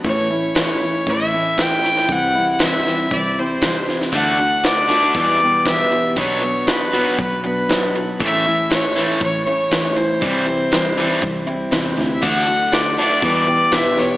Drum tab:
CC |----------------|----------------|----------------|----------------|
HH |x---x---x---x---|x---x---x---x---|x---x---x---x---|x---x---x---x---|
SD |----o-------o-oo|----o-o-----o-oo|----o-o-----o---|----o-------o---|
BD |o-------o---o---|o-------o---o---|o-------o---o---|o-------o---o---|

CC |----------------|----------------|x---------------|
HH |x---x---x---x---|x---x---x---x---|x---x---x---x---|
SD |----o-o-----o---|----o-------o-o-|----o-o-----o-o-|
BD |o-------o---o---|o-------o---o---|o-------o---o---|